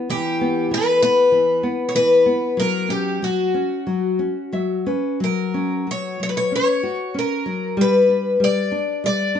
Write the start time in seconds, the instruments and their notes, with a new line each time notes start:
0.10 nylon-string guitar E3, twelve-string acoustic guitar G4
0.41 nylon-string guitar B3
0.71 nylon-string guitar E3, twelve-string acoustic guitar B4
1.02 nylon-string guitar B3, twelve-string acoustic guitar B4
1.32 nylon-string guitar E3
1.63 nylon-string guitar B3
1.89 twelve-string acoustic guitar C#5
1.95 nylon-string guitar E3, twelve-string acoustic guitar B4
2.26 nylon-string guitar B3
2.57 nylon-string guitar F#3, twelve-string acoustic guitar A#4
2.89 nylon-string guitar C#4, twelve-string acoustic guitar G4
3.22 nylon-string guitar F#3, twelve-string acoustic guitar F#4
3.54 nylon-string guitar C#4
3.87 nylon-string guitar F#3
4.19 nylon-string guitar C#4
4.52 nylon-string guitar F#3 E5
4.86 nylon-string guitar C#4 B4
5.20 nylon-string guitar F#3, twelve-string acoustic guitar A#4
5.54 nylon-string guitar C#4
5.87 nylon-string guitar F#4
5.91 twelve-string acoustic guitar C#5
6.20 nylon-string guitar F#3, twelve-string acoustic guitar C#5
6.29 twelve-string acoustic guitar B4
6.37 twelve-string acoustic guitar C#5
6.52 nylon-string guitar C#4, twelve-string acoustic guitar C#5
6.83 nylon-string guitar F#4
7.14 nylon-string guitar C#4
7.19 twelve-string acoustic guitar A#4
7.46 nylon-string guitar F#3
7.77 nylon-string guitar G3
7.81 twelve-string acoustic guitar B4
8.09 nylon-string guitar D4
8.40 nylon-string guitar G3, twelve-string acoustic guitar D5
8.72 nylon-string guitar D4
9.04 nylon-string guitar G3, twelve-string acoustic guitar D5
9.35 nylon-string guitar D4